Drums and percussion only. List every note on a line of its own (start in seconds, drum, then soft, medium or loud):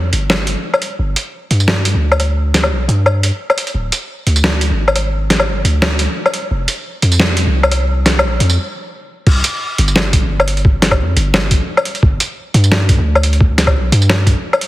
0.13 closed hi-hat medium
0.30 snare loud
0.30 low woodblock medium
0.47 closed hi-hat medium
0.74 low woodblock medium
0.82 closed hi-hat medium
1.16 closed hi-hat medium
1.51 closed hi-hat medium
1.60 tambourine soft
1.68 snare loud
1.85 closed hi-hat medium
2.12 low woodblock medium
2.20 closed hi-hat medium
2.20 low woodblock soft
2.54 snare medium
2.54 closed hi-hat medium
2.63 low woodblock medium
2.89 closed hi-hat medium
3.06 low woodblock medium
3.23 closed hi-hat medium
3.50 low woodblock medium
3.58 closed hi-hat medium
3.67 closed hi-hat soft
3.92 closed hi-hat medium
3.92 tambourine soft
4.27 closed hi-hat medium
4.36 tambourine soft
4.44 snare loud
4.61 closed hi-hat medium
4.88 low woodblock medium
4.96 closed hi-hat medium
4.96 low woodblock soft
5.30 snare medium
5.30 closed hi-hat medium
5.40 low woodblock medium
5.65 closed hi-hat medium
5.82 snare loud
5.82 low woodblock medium
5.99 closed hi-hat medium
6.26 low woodblock medium
6.34 closed hi-hat medium
6.68 closed hi-hat medium
6.68 tambourine soft
7.02 closed hi-hat medium
7.12 tambourine soft
7.20 snare loud
7.37 closed hi-hat medium
7.63 low woodblock medium
7.72 closed hi-hat medium
7.72 low woodblock soft
8.06 snare medium
8.06 closed hi-hat medium
8.19 low woodblock medium
8.40 closed hi-hat medium
8.50 tambourine soft
9.27 kick loud
9.27 crash loud
9.44 closed hi-hat medium
9.44 tambourine soft
9.78 closed hi-hat medium
9.88 tambourine soft
9.96 snare loud
10.13 kick loud
10.13 closed hi-hat medium
10.40 low woodblock medium
10.48 closed hi-hat medium
10.57 closed hi-hat soft
10.65 kick loud
10.82 snare medium
10.82 closed hi-hat medium
10.91 kick medium
10.91 low woodblock medium
11.17 closed hi-hat medium
11.34 snare loud
11.34 low woodblock medium
11.51 kick loud
11.51 closed hi-hat medium
11.77 low woodblock medium
11.85 closed hi-hat medium
11.95 closed hi-hat soft
12.03 kick loud
12.20 closed hi-hat medium
12.20 tambourine soft
12.54 closed hi-hat medium
12.64 tambourine soft
12.72 snare loud
12.89 kick loud
12.89 closed hi-hat medium
13.15 low woodblock medium
13.23 closed hi-hat medium
13.33 closed hi-hat soft
13.41 kick loud
13.58 snare medium
13.58 closed hi-hat medium
13.58 tambourine soft
13.67 kick medium
13.67 low woodblock medium
13.92 closed hi-hat medium
14.02 tambourine soft
14.10 snare loud
14.10 low woodblock medium
14.27 kick loud
14.27 closed hi-hat medium
14.53 low woodblock medium
14.61 closed hi-hat medium